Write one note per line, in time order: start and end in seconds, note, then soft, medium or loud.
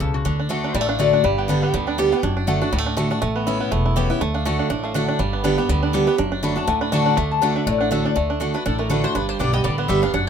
0.00 0.22 C#2 medium
0.00 0.24 C#3 medium
0.00 0.14 A4 medium
0.14 0.38 F#4 loud
0.25 0.63 D2 medium
0.25 0.48 D3 medium
0.25 0.40 D4 medium
0.40 0.64 D4 medium
0.49 0.73 D3 medium
0.49 0.73 A3 medium
0.49 0.75 A3 medium
0.49 0.74 D4 medium
0.49 0.74 F#4 medium
0.64 0.88 D4 medium
0.64 0.75 C5 loud
0.74 1.12 A1 medium
0.74 1.22 A2 loud
0.74 0.81 G3 medium
0.74 0.88 D5 medium
0.81 0.99 A3 medium
0.88 1.13 D4 medium
0.88 0.99 F5 medium
0.99 1.23 D3 medium
0.99 1.23 A3 medium
0.99 1.24 A3 medium
0.99 1.23 D4 loud
0.99 1.23 F#4 loud
0.99 1.23 D5 loud
1.13 1.24 D4 medium
1.24 1.62 G1 medium
1.24 1.71 G2 medium
1.24 1.60 G3 medium
1.38 1.62 B3 medium
1.38 1.49 G5 medium
1.48 1.72 D3 medium
1.48 1.73 G3 medium
1.48 1.73 B3 loud
1.48 1.85 D4 medium
1.48 1.73 G4 medium
1.62 1.96 B3 medium
1.62 1.86 G5 loud
1.74 2.11 D2 medium
1.74 1.97 D3 medium
1.74 2.10 G3 medium
1.87 2.21 D4 medium
1.87 2.11 G5 loud
1.98 2.11 D3 loud
1.98 2.12 G3 loud
1.98 2.12 B3 loud
1.98 2.23 G4 medium
1.98 2.11 G4 medium
2.12 2.23 B3 medium
2.12 2.23 G4 medium
2.12 2.47 G5 loud
2.23 2.61 F#1 medium
2.23 2.70 F#2 medium
2.23 2.35 D4 medium
2.37 2.60 D4 medium
2.47 2.61 D3 medium
2.47 2.61 A3 loud
2.47 2.72 A3 medium
2.47 2.61 D4 medium
2.47 2.60 F#4 medium
2.47 3.20 F#5 loud
2.61 2.85 D4 medium
2.61 2.73 D4 soft
2.61 2.72 F#4 medium
2.72 3.10 D2 medium
2.72 3.20 A2 loud
2.72 2.78 G3 medium
2.78 2.96 A3 medium
2.86 3.10 D4 medium
2.97 3.10 D3 medium
2.97 3.10 A3 medium
2.97 3.20 A3 medium
2.97 3.11 D4 loud
2.97 3.09 F#4 loud
3.10 3.22 D4 medium
3.10 3.21 F#4 medium
3.22 3.60 A1 medium
3.22 3.69 A2 medium
3.22 3.57 A3 medium
3.36 3.59 B3 medium
3.47 3.70 E3 medium
3.47 3.71 B3 medium
3.47 3.71 C#4 medium
3.47 3.82 E4 medium
3.47 3.71 E4 medium
3.60 3.94 B3 medium
3.71 4.09 E1 medium
3.71 4.19 E2 loud
3.71 4.07 A3 medium
3.86 4.19 E4 medium
3.96 4.09 E3 medium
3.96 4.09 B3 loud
3.96 4.10 C#4 medium
3.96 4.09 E4 loud
3.96 4.21 G4 medium
4.10 4.21 B3 medium
4.10 4.21 C#4 medium
4.10 4.20 E4 medium
4.21 4.59 D2 medium
4.21 4.44 D3 medium
4.21 4.45 A3 medium
4.34 4.59 D4 medium
4.34 4.45 F5 medium
4.45 4.69 D3 medium
4.45 4.81 A3 medium
4.45 4.69 A3 medium
4.45 4.70 D4 medium
4.45 4.70 F#4 medium
4.59 4.70 D4 soft
4.59 4.83 F5 loud
4.70 5.08 A1 medium
4.70 5.17 A2 medium
4.70 4.95 D4 medium
4.84 5.17 A3 medium
4.84 5.09 F5 medium
4.94 5.18 D3 medium
4.94 5.19 A3 medium
4.94 5.08 D4 medium
4.94 5.19 D4 loud
4.94 5.19 F#4 loud
5.09 5.44 D4 medium
5.09 5.43 G5 loud
5.19 5.57 G1 medium
5.19 5.67 G2 medium
5.19 5.55 G3 medium
5.33 5.57 B3 medium
5.44 5.57 D3 medium
5.44 5.58 G3 medium
5.44 5.58 B3 loud
5.44 5.82 D4 medium
5.44 5.57 G4 loud
5.44 6.16 G5 loud
5.58 5.92 B3 medium
5.58 5.69 B3 soft
5.58 5.69 G4 medium
5.69 6.07 D2 medium
5.69 5.92 D3 loud
5.69 6.05 G3 medium
5.83 6.18 D4 medium
5.93 6.07 D3 medium
5.93 6.07 G3 loud
5.93 6.07 B3 loud
5.93 6.19 G4 medium
5.93 6.06 G4 loud
6.07 6.18 B3 medium
6.07 6.19 B3 medium
6.07 6.18 G4 medium
6.18 6.57 F#1 medium
6.18 6.66 F#2 medium
6.18 6.32 D4 medium
6.32 6.56 D4 medium
6.43 6.56 D3 medium
6.43 6.56 A3 medium
6.43 6.67 A3 medium
6.43 6.56 D4 loud
6.43 6.54 F#4 loud
6.43 6.56 B5 loud
6.56 6.81 D4 medium
6.56 6.68 D4 medium
6.56 6.67 F#4 medium
6.56 6.68 A5 medium
6.67 7.06 D2 medium
6.67 7.15 A2 loud
6.67 6.92 A3 medium
6.67 6.81 F#5 medium
6.81 7.05 D4 medium
6.81 6.92 B5 loud
6.92 7.16 D3 medium
6.92 7.16 A3 medium
6.92 7.17 D4 loud
6.92 7.17 F#4 loud
6.92 7.06 A5 loud
7.06 7.42 D4 medium
7.06 7.16 F#5 loud
7.17 7.55 D2 medium
7.17 7.40 D3 medium
7.17 7.53 A3 medium
7.17 7.30 E5 medium
7.31 7.42 A5 loud
7.42 7.66 D3 loud
7.42 7.66 A3 medium
7.42 7.55 D4 medium
7.42 7.66 D4 medium
7.42 7.66 F#4 loud
7.42 7.55 F#5 loud
7.56 7.79 D4 medium
7.56 7.66 E5 medium
7.67 8.05 A1 medium
7.67 8.14 A2 loud
7.67 8.03 A3 medium
7.67 7.80 D5 medium
7.81 7.91 D4 medium
7.81 7.91 F#5 medium
7.91 8.14 D3 medium
7.91 8.15 A3 medium
7.91 8.04 D4 medium
7.91 8.15 D4 medium
7.91 8.16 F#4 medium
7.91 8.05 E5 loud
8.05 8.16 D4 medium
8.05 8.16 D5 loud
8.16 8.54 D2 medium
8.16 8.39 D3 medium
8.16 8.52 A3 medium
8.30 8.41 D4 medium
8.40 8.54 D3 medium
8.40 8.54 A3 medium
8.40 8.54 D4 medium
8.40 8.53 F#4 medium
8.54 8.65 D4 medium
8.54 8.66 D4 medium
8.54 8.65 F#4 medium
8.54 8.65 B4 medium
8.66 9.04 A1 medium
8.66 9.13 A2 medium
8.66 8.90 D4 medium
8.66 8.78 A4 medium
8.79 9.13 A3 medium
8.79 8.90 A#4 medium
8.90 9.03 D3 medium
8.90 9.03 A3 loud
8.90 9.04 D4 medium
8.90 9.03 D4 medium
8.90 9.02 F#4 medium
8.90 9.04 B4 medium
9.04 9.14 D4 medium
9.04 9.15 D4 soft
9.04 9.15 F#4 medium
9.04 9.15 C5 loud
9.15 9.34 G1 medium
9.15 9.62 G2 medium
9.15 9.39 D4 medium
9.15 9.28 B4 medium
9.29 9.63 G3 medium
9.29 9.39 C5 loud
9.39 9.61 B1 medium
9.39 9.53 D3 medium
9.39 9.53 G3 medium
9.39 9.53 B3 medium
9.39 9.76 D4 medium
9.39 9.52 G4 medium
9.39 9.53 D5 medium
9.53 9.77 B3 medium
9.53 9.65 B3 soft
9.53 9.64 G4 medium
9.53 9.63 D#5 medium
9.64 9.86 A1 medium
9.64 9.87 D3 loud
9.64 10.01 G3 medium
9.64 9.78 D5 medium
9.78 10.12 B3 medium
9.78 9.89 C5 medium
9.88 10.10 G1 medium
9.88 10.02 D3 medium
9.88 10.03 G3 loud
9.88 10.02 B3 medium
9.88 10.14 G4 medium
9.88 10.01 G4 medium
9.88 10.02 E5 medium
10.02 10.14 B3 soft
10.02 10.13 D4 medium
10.02 10.13 G4 medium
10.02 10.13 F5 medium
10.14 10.29 F#1 medium
10.14 10.29 F#2 medium
10.14 10.29 D4 medium
10.14 10.27 F#5 medium